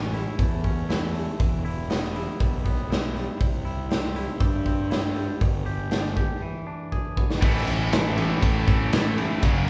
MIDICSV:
0, 0, Header, 1, 6, 480
1, 0, Start_track
1, 0, Tempo, 502513
1, 1327, Time_signature, 4, 2, 24, 8
1, 9264, End_track
2, 0, Start_track
2, 0, Title_t, "Clean electric guitar"
2, 0, Program_c, 0, 27
2, 0, Note_on_c, 0, 45, 57
2, 0, Note_on_c, 0, 61, 62
2, 0, Note_on_c, 0, 64, 58
2, 129, Note_off_c, 0, 64, 0
2, 132, Note_on_c, 0, 64, 63
2, 373, Note_on_c, 0, 57, 57
2, 603, Note_off_c, 0, 61, 0
2, 610, Note_off_c, 0, 45, 0
2, 615, Note_on_c, 0, 61, 61
2, 847, Note_off_c, 0, 64, 0
2, 851, Note_on_c, 0, 64, 62
2, 1072, Note_off_c, 0, 57, 0
2, 1083, Note_on_c, 0, 57, 57
2, 1325, Note_off_c, 0, 57, 0
2, 1327, Note_on_c, 0, 52, 60
2, 1331, Note_off_c, 0, 61, 0
2, 1569, Note_off_c, 0, 64, 0
2, 1573, Note_on_c, 0, 64, 59
2, 1815, Note_on_c, 0, 59, 58
2, 2053, Note_off_c, 0, 64, 0
2, 2065, Note_on_c, 0, 64, 64
2, 2295, Note_on_c, 0, 55, 66
2, 2517, Note_off_c, 0, 59, 0
2, 2527, Note_off_c, 0, 52, 0
2, 2529, Note_on_c, 0, 59, 60
2, 2760, Note_off_c, 0, 64, 0
2, 2772, Note_on_c, 0, 64, 63
2, 3005, Note_off_c, 0, 55, 0
2, 3009, Note_on_c, 0, 55, 55
2, 3247, Note_on_c, 0, 48, 63
2, 3248, Note_off_c, 0, 59, 0
2, 3250, Note_off_c, 0, 64, 0
2, 3486, Note_on_c, 0, 64, 64
2, 3729, Note_on_c, 0, 60, 62
2, 3961, Note_off_c, 0, 64, 0
2, 3973, Note_on_c, 0, 64, 64
2, 4205, Note_off_c, 0, 55, 0
2, 4208, Note_on_c, 0, 55, 63
2, 4440, Note_off_c, 0, 60, 0
2, 4448, Note_off_c, 0, 48, 0
2, 4452, Note_on_c, 0, 60, 59
2, 4674, Note_off_c, 0, 64, 0
2, 4685, Note_on_c, 0, 64, 66
2, 4915, Note_off_c, 0, 55, 0
2, 4927, Note_on_c, 0, 55, 58
2, 5151, Note_off_c, 0, 55, 0
2, 5162, Note_on_c, 0, 55, 62
2, 5167, Note_off_c, 0, 64, 0
2, 5170, Note_off_c, 0, 60, 0
2, 5405, Note_on_c, 0, 67, 60
2, 5646, Note_on_c, 0, 62, 60
2, 5876, Note_off_c, 0, 67, 0
2, 5888, Note_on_c, 0, 67, 60
2, 6126, Note_off_c, 0, 55, 0
2, 6128, Note_off_c, 0, 62, 0
2, 6128, Note_off_c, 0, 67, 0
2, 6131, Note_on_c, 0, 52, 61
2, 6369, Note_on_c, 0, 62, 58
2, 6610, Note_on_c, 0, 68, 62
2, 6848, Note_on_c, 0, 59, 57
2, 7084, Note_on_c, 0, 45, 68
2, 7088, Note_off_c, 0, 59, 0
2, 7089, Note_off_c, 0, 62, 0
2, 7089, Note_off_c, 0, 68, 0
2, 7090, Note_off_c, 0, 52, 0
2, 7564, Note_on_c, 0, 57, 67
2, 7798, Note_on_c, 0, 52, 67
2, 8030, Note_off_c, 0, 57, 0
2, 8041, Note_on_c, 0, 57, 69
2, 8285, Note_off_c, 0, 45, 0
2, 8289, Note_on_c, 0, 61, 66
2, 8528, Note_on_c, 0, 64, 69
2, 8762, Note_off_c, 0, 57, 0
2, 8774, Note_on_c, 0, 57, 68
2, 9001, Note_off_c, 0, 52, 0
2, 9006, Note_off_c, 0, 64, 0
2, 9007, Note_off_c, 0, 61, 0
2, 9008, Note_on_c, 0, 42, 73
2, 9010, Note_off_c, 0, 57, 0
2, 9264, Note_off_c, 0, 42, 0
2, 9264, End_track
3, 0, Start_track
3, 0, Title_t, "Overdriven electric guitar"
3, 0, Program_c, 1, 29
3, 7079, Note_on_c, 1, 45, 94
3, 7084, Note_on_c, 1, 52, 93
3, 7090, Note_on_c, 1, 57, 94
3, 7093, Note_on_c, 1, 61, 99
3, 7100, Note_on_c, 1, 64, 92
3, 7786, Note_off_c, 1, 64, 0
3, 7789, Note_off_c, 1, 45, 0
3, 7791, Note_off_c, 1, 52, 0
3, 7794, Note_off_c, 1, 57, 0
3, 7798, Note_on_c, 1, 64, 87
3, 7803, Note_off_c, 1, 61, 0
3, 7807, Note_on_c, 1, 61, 77
3, 7809, Note_on_c, 1, 57, 78
3, 7819, Note_on_c, 1, 52, 65
3, 7823, Note_on_c, 1, 45, 65
3, 8986, Note_off_c, 1, 64, 0
3, 8991, Note_off_c, 1, 61, 0
3, 8992, Note_off_c, 1, 57, 0
3, 8994, Note_off_c, 1, 45, 0
3, 8997, Note_off_c, 1, 52, 0
3, 8998, Note_on_c, 1, 42, 90
3, 9003, Note_on_c, 1, 49, 96
3, 9006, Note_on_c, 1, 54, 88
3, 9016, Note_on_c, 1, 58, 95
3, 9018, Note_on_c, 1, 61, 100
3, 9264, Note_off_c, 1, 42, 0
3, 9264, Note_off_c, 1, 49, 0
3, 9264, Note_off_c, 1, 54, 0
3, 9264, Note_off_c, 1, 58, 0
3, 9264, Note_off_c, 1, 61, 0
3, 9264, End_track
4, 0, Start_track
4, 0, Title_t, "Distorted electric guitar"
4, 0, Program_c, 2, 30
4, 8281, Note_on_c, 2, 57, 88
4, 8293, Note_on_c, 2, 52, 78
4, 8303, Note_on_c, 2, 45, 71
4, 8509, Note_off_c, 2, 45, 0
4, 8509, Note_off_c, 2, 57, 0
4, 8515, Note_off_c, 2, 52, 0
4, 8520, Note_on_c, 2, 45, 72
4, 8532, Note_on_c, 2, 52, 80
4, 8546, Note_on_c, 2, 57, 91
4, 8988, Note_off_c, 2, 45, 0
4, 8994, Note_off_c, 2, 52, 0
4, 9001, Note_off_c, 2, 57, 0
4, 9264, End_track
5, 0, Start_track
5, 0, Title_t, "Fingered electric bass"
5, 0, Program_c, 3, 33
5, 0, Note_on_c, 3, 33, 88
5, 238, Note_off_c, 3, 33, 0
5, 374, Note_on_c, 3, 40, 78
5, 1200, Note_off_c, 3, 40, 0
5, 1335, Note_on_c, 3, 28, 91
5, 2160, Note_off_c, 3, 28, 0
5, 2293, Note_on_c, 3, 35, 82
5, 3119, Note_off_c, 3, 35, 0
5, 3251, Note_on_c, 3, 36, 88
5, 4079, Note_off_c, 3, 36, 0
5, 4207, Note_on_c, 3, 43, 80
5, 5037, Note_off_c, 3, 43, 0
5, 5168, Note_on_c, 3, 31, 91
5, 5997, Note_off_c, 3, 31, 0
5, 7088, Note_on_c, 3, 33, 96
5, 7295, Note_off_c, 3, 33, 0
5, 7318, Note_on_c, 3, 33, 80
5, 7943, Note_off_c, 3, 33, 0
5, 8047, Note_on_c, 3, 45, 104
5, 8254, Note_off_c, 3, 45, 0
5, 8289, Note_on_c, 3, 33, 81
5, 8495, Note_off_c, 3, 33, 0
5, 9008, Note_on_c, 3, 30, 95
5, 9264, Note_off_c, 3, 30, 0
5, 9264, End_track
6, 0, Start_track
6, 0, Title_t, "Drums"
6, 139, Note_on_c, 9, 46, 44
6, 235, Note_off_c, 9, 46, 0
6, 372, Note_on_c, 9, 36, 98
6, 372, Note_on_c, 9, 46, 63
6, 468, Note_off_c, 9, 36, 0
6, 468, Note_off_c, 9, 46, 0
6, 613, Note_on_c, 9, 36, 64
6, 613, Note_on_c, 9, 46, 44
6, 708, Note_off_c, 9, 36, 0
6, 708, Note_off_c, 9, 46, 0
6, 857, Note_on_c, 9, 46, 57
6, 863, Note_on_c, 9, 38, 90
6, 952, Note_off_c, 9, 46, 0
6, 959, Note_off_c, 9, 38, 0
6, 1100, Note_on_c, 9, 46, 46
6, 1195, Note_off_c, 9, 46, 0
6, 1336, Note_on_c, 9, 36, 94
6, 1339, Note_on_c, 9, 46, 62
6, 1431, Note_off_c, 9, 36, 0
6, 1435, Note_off_c, 9, 46, 0
6, 1584, Note_on_c, 9, 46, 46
6, 1680, Note_off_c, 9, 46, 0
6, 1815, Note_on_c, 9, 46, 60
6, 1822, Note_on_c, 9, 38, 90
6, 1911, Note_off_c, 9, 46, 0
6, 1917, Note_off_c, 9, 38, 0
6, 1948, Note_on_c, 9, 38, 28
6, 2044, Note_off_c, 9, 38, 0
6, 2064, Note_on_c, 9, 46, 48
6, 2159, Note_off_c, 9, 46, 0
6, 2296, Note_on_c, 9, 36, 91
6, 2303, Note_on_c, 9, 46, 58
6, 2392, Note_off_c, 9, 36, 0
6, 2398, Note_off_c, 9, 46, 0
6, 2536, Note_on_c, 9, 36, 65
6, 2545, Note_on_c, 9, 46, 40
6, 2631, Note_off_c, 9, 36, 0
6, 2641, Note_off_c, 9, 46, 0
6, 2785, Note_on_c, 9, 46, 56
6, 2792, Note_on_c, 9, 38, 93
6, 2881, Note_off_c, 9, 46, 0
6, 2888, Note_off_c, 9, 38, 0
6, 3021, Note_on_c, 9, 46, 42
6, 3117, Note_off_c, 9, 46, 0
6, 3253, Note_on_c, 9, 36, 89
6, 3262, Note_on_c, 9, 46, 50
6, 3348, Note_off_c, 9, 36, 0
6, 3357, Note_off_c, 9, 46, 0
6, 3499, Note_on_c, 9, 46, 41
6, 3595, Note_off_c, 9, 46, 0
6, 3733, Note_on_c, 9, 46, 53
6, 3740, Note_on_c, 9, 38, 90
6, 3829, Note_off_c, 9, 46, 0
6, 3835, Note_off_c, 9, 38, 0
6, 3859, Note_on_c, 9, 38, 29
6, 3955, Note_off_c, 9, 38, 0
6, 3971, Note_on_c, 9, 46, 46
6, 4066, Note_off_c, 9, 46, 0
6, 4204, Note_on_c, 9, 46, 55
6, 4207, Note_on_c, 9, 36, 97
6, 4299, Note_off_c, 9, 46, 0
6, 4303, Note_off_c, 9, 36, 0
6, 4449, Note_on_c, 9, 36, 65
6, 4452, Note_on_c, 9, 46, 42
6, 4544, Note_off_c, 9, 36, 0
6, 4547, Note_off_c, 9, 46, 0
6, 4693, Note_on_c, 9, 46, 57
6, 4699, Note_on_c, 9, 38, 88
6, 4788, Note_off_c, 9, 46, 0
6, 4795, Note_off_c, 9, 38, 0
6, 4928, Note_on_c, 9, 46, 45
6, 5023, Note_off_c, 9, 46, 0
6, 5169, Note_on_c, 9, 36, 90
6, 5171, Note_on_c, 9, 46, 59
6, 5265, Note_off_c, 9, 36, 0
6, 5266, Note_off_c, 9, 46, 0
6, 5411, Note_on_c, 9, 46, 45
6, 5506, Note_off_c, 9, 46, 0
6, 5647, Note_on_c, 9, 46, 62
6, 5654, Note_on_c, 9, 38, 97
6, 5742, Note_off_c, 9, 46, 0
6, 5749, Note_off_c, 9, 38, 0
6, 5891, Note_on_c, 9, 36, 69
6, 5895, Note_on_c, 9, 46, 46
6, 5987, Note_off_c, 9, 36, 0
6, 5990, Note_off_c, 9, 46, 0
6, 6612, Note_on_c, 9, 36, 48
6, 6708, Note_off_c, 9, 36, 0
6, 6851, Note_on_c, 9, 36, 70
6, 6946, Note_off_c, 9, 36, 0
6, 6977, Note_on_c, 9, 38, 64
6, 7073, Note_off_c, 9, 38, 0
6, 7088, Note_on_c, 9, 49, 109
6, 7091, Note_on_c, 9, 36, 104
6, 7183, Note_off_c, 9, 49, 0
6, 7186, Note_off_c, 9, 36, 0
6, 7328, Note_on_c, 9, 51, 66
6, 7424, Note_off_c, 9, 51, 0
6, 7570, Note_on_c, 9, 51, 85
6, 7577, Note_on_c, 9, 38, 111
6, 7666, Note_off_c, 9, 51, 0
6, 7673, Note_off_c, 9, 38, 0
6, 7809, Note_on_c, 9, 51, 73
6, 7905, Note_off_c, 9, 51, 0
6, 8048, Note_on_c, 9, 36, 90
6, 8050, Note_on_c, 9, 51, 95
6, 8144, Note_off_c, 9, 36, 0
6, 8146, Note_off_c, 9, 51, 0
6, 8285, Note_on_c, 9, 51, 69
6, 8289, Note_on_c, 9, 36, 84
6, 8381, Note_off_c, 9, 51, 0
6, 8384, Note_off_c, 9, 36, 0
6, 8527, Note_on_c, 9, 51, 96
6, 8534, Note_on_c, 9, 38, 108
6, 8623, Note_off_c, 9, 51, 0
6, 8629, Note_off_c, 9, 38, 0
6, 8767, Note_on_c, 9, 51, 71
6, 8863, Note_off_c, 9, 51, 0
6, 9003, Note_on_c, 9, 51, 100
6, 9007, Note_on_c, 9, 36, 99
6, 9098, Note_off_c, 9, 51, 0
6, 9102, Note_off_c, 9, 36, 0
6, 9264, End_track
0, 0, End_of_file